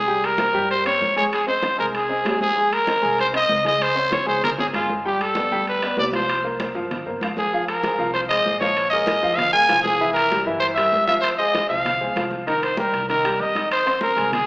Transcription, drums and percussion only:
0.23 high conga, high timbale
0.38 high conga, high timbale
0.54 high conga
0.70 high conga, high timbale
0.86 high conga, high timbale
1.02 high conga
1.17 high conga, high timbale
1.33 high conga, high timbale
1.48 high conga
1.63 high conga, high timbale
1.78 high conga
1.94 high conga, high timbale
2.10 high conga
2.25 high conga, high timbale, low timbale
2.41 high conga
2.57 high conga
2.72 high conga, high timbale
2.87 high conga, high timbale
3.03 high conga
3.19 high conga, high timbale
3.34 high conga, high timbale
3.49 high conga
3.65 high conga, high timbale
3.81 high conga, high timbale
3.97 high conga
4.12 high conga, high timbale
4.28 high conga
4.43 high conga, low conga, high timbale
4.58 high conga, low conga
4.73 high conga, high timbale
4.90 high conga
5.05 high conga
5.20 high conga, high timbale
5.35 high conga, high timbale
5.51 high conga
5.66 high conga, high timbale
5.81 high conga, high timbale
5.97 high conga, low timbale
6.13 high conga, high timbale
6.29 high conga, high timbale
6.45 high conga
6.60 high conga, high timbale
6.76 high conga
6.91 high conga, low conga, high timbale
7.07 high conga
7.21 high conga, high timbale
7.37 high conga
7.52 high conga
7.68 high conga, high timbale
7.83 high conga, high timbale
7.99 high conga
8.15 high conga, high timbale
8.31 high conga, high timbale
8.46 high conga
8.61 high conga, high timbale
8.77 high conga, high timbale
8.92 high conga
9.07 high conga, high timbale
9.24 high conga
9.38 high conga, low conga, high timbale
9.54 high conga
9.69 high conga, high timbale
9.85 high conga
10.01 high conga
10.16 high conga, high timbale
10.32 high conga, high timbale
10.47 high conga
10.62 high conga, high timbale
10.78 high conga, high timbale
10.93 high conga
11.08 high conga, high timbale
11.24 high conga, high timbale
11.39 high conga
11.55 high conga, high timbale
11.70 high conga
11.85 high conga, low conga, high timbale
12.01 high conga
12.16 high conga, high timbale
12.31 high conga
12.47 high conga, high timbale
12.63 high conga, high timbale
12.77 high conga
12.94 high timbale
13.09 high conga, high timbale
13.25 high conga, high timbale
13.40 high conga
13.55 high conga, high timbale
13.71 high conga, high timbale
13.85 high conga, high timbale
14.01 high conga
14.16 high conga, high timbale
14.33 high conga, low conga, high timbale

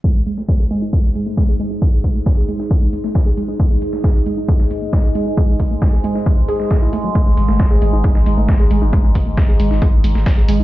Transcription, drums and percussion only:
0.04 kick, closed hi-hat
0.26 open hi-hat
0.37 snare
0.48 kick, snare, closed hi-hat
0.71 closed hi-hat, open hi-hat
0.93 kick, closed hi-hat
1.04 snare
1.15 closed hi-hat, open hi-hat
1.37 kick, snare, closed hi-hat
1.49 closed hi-hat
1.60 closed hi-hat, open hi-hat
1.82 kick, closed hi-hat
2.04 kick, closed hi-hat, open hi-hat
2.26 kick, snare, closed hi-hat
2.48 closed hi-hat, open hi-hat
2.60 snare
2.71 kick, closed hi-hat
2.93 closed hi-hat, open hi-hat
3.04 snare
3.15 kick, snare, closed hi-hat
3.37 closed hi-hat, open hi-hat
3.60 kick, closed hi-hat
3.82 open hi-hat
3.93 snare
4.04 kick, snare, closed hi-hat
4.26 closed hi-hat, open hi-hat
4.48 kick, closed hi-hat
4.60 snare
4.71 closed hi-hat, open hi-hat
4.93 kick, snare, closed hi-hat
5.04 closed hi-hat
5.15 closed hi-hat, open hi-hat
5.37 kick, closed hi-hat
5.59 kick, closed hi-hat, open hi-hat
5.82 kick, snare, closed hi-hat
6.04 closed hi-hat, open hi-hat
6.15 snare
6.26 kick, closed hi-hat
6.48 closed hi-hat, open hi-hat
6.60 snare
6.71 kick, snare, closed hi-hat
6.93 closed hi-hat, open hi-hat
7.15 kick, closed hi-hat
7.37 open hi-hat
7.48 snare
7.60 kick, snare, closed hi-hat
7.82 closed hi-hat, open hi-hat
8.04 kick, closed hi-hat
8.15 snare
8.26 closed hi-hat, open hi-hat
8.48 kick, snare, closed hi-hat
8.60 closed hi-hat
8.71 closed hi-hat, open hi-hat
8.93 kick, closed hi-hat
9.15 kick, closed hi-hat, open hi-hat
9.37 kick, snare, closed hi-hat
9.60 closed hi-hat, open hi-hat
9.71 snare
9.82 kick, closed hi-hat
10.04 closed hi-hat, open hi-hat
10.15 snare
10.26 kick, snare, closed hi-hat
10.48 closed hi-hat, open hi-hat

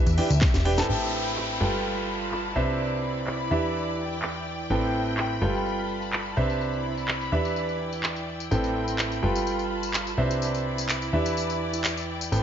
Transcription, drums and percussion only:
0.07 closed hi-hat, tambourine
0.18 open hi-hat
0.30 closed hi-hat, tambourine
0.41 kick, snare, clap, tambourine
0.54 snare, closed hi-hat, tambourine
0.65 open hi-hat
0.78 snare, closed hi-hat, tambourine
1.37 clap
2.32 clap
3.27 clap
3.64 tambourine
4.11 tambourine
4.22 clap, tambourine
4.35 tambourine
4.59 tambourine
4.70 tambourine
4.83 tambourine
5.07 tambourine
5.17 clap, tambourine
5.31 tambourine
5.54 tambourine
5.66 tambourine
5.78 tambourine
6.02 tambourine
6.13 clap, tambourine
6.26 tambourine
6.50 tambourine
6.61 tambourine
6.74 tambourine
6.97 tambourine
7.08 clap, tambourine
7.21 tambourine
7.45 tambourine
7.56 tambourine
7.69 tambourine
7.93 tambourine
8.03 clap, tambourine
8.16 tambourine
8.40 tambourine
8.52 tambourine
8.64 tambourine
8.88 tambourine
8.99 clap, tambourine
9.12 tambourine
9.36 tambourine
9.47 tambourine
9.59 tambourine
9.83 tambourine
9.94 clap, tambourine
10.07 tambourine
10.31 tambourine
10.42 tambourine
10.54 tambourine
10.78 tambourine
10.89 clap, tambourine
11.02 tambourine
11.26 tambourine
11.37 tambourine
11.50 tambourine
11.73 tambourine
11.84 clap, tambourine
11.97 tambourine
12.21 tambourine
12.32 tambourine

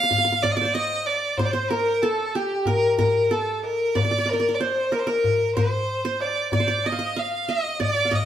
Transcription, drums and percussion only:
0.11 darbuka dum
0.44 darbuka dum
1.06 darbuka tek
1.38 darbuka dum
1.71 darbuka tek
2.02 darbuka ka
2.50 darbuka ka
2.66 darbuka dum
2.83 darbuka ka
2.98 darbuka dum
3.15 darbuka ka
3.64 darbuka tek
3.96 darbuka dum
4.27 darbuka tek
4.60 darbuka tek
4.75 darbuka ka
4.92 darbuka tek
5.08 darbuka ka
5.24 darbuka dum
5.57 darbuka dum
5.72 darbuka ka
6.20 darbuka tek
6.52 darbuka dum
6.84 darbuka tek
7.16 darbuka ka
7.65 darbuka ka
7.81 darbuka dum
8.12 darbuka dum

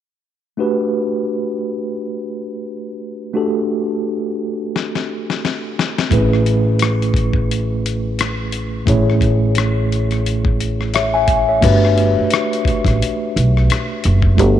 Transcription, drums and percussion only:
4.76 snare
4.95 snare
5.30 snare
5.45 snare
5.79 snare
5.98 snare
6.11 kick, closed hi-hat
6.33 cross-stick
6.46 closed hi-hat
6.79 cross-stick, closed hi-hat
7.02 closed hi-hat
7.14 kick, closed hi-hat
7.33 kick
7.51 closed hi-hat
7.86 closed hi-hat
8.19 cross-stick, closed hi-hat
8.52 closed hi-hat
8.87 kick, closed hi-hat
9.10 cross-stick
9.21 kick, closed hi-hat
9.55 cross-stick, closed hi-hat
9.92 closed hi-hat
10.11 cross-stick, closed hi-hat
10.26 closed hi-hat
10.45 kick
10.60 closed hi-hat
10.81 cross-stick
10.94 cross-stick, closed hi-hat
11.28 kick, closed hi-hat
11.62 kick, closed hi-hat, crash
11.85 cross-stick
11.98 closed hi-hat
12.31 cross-stick, closed hi-hat
12.53 closed hi-hat
12.65 kick, closed hi-hat
12.85 kick, cross-stick, closed hi-hat
13.02 closed hi-hat
13.37 closed hi-hat
13.57 cross-stick
13.70 cross-stick, closed hi-hat
14.04 closed hi-hat
14.22 kick
14.38 kick, closed hi-hat

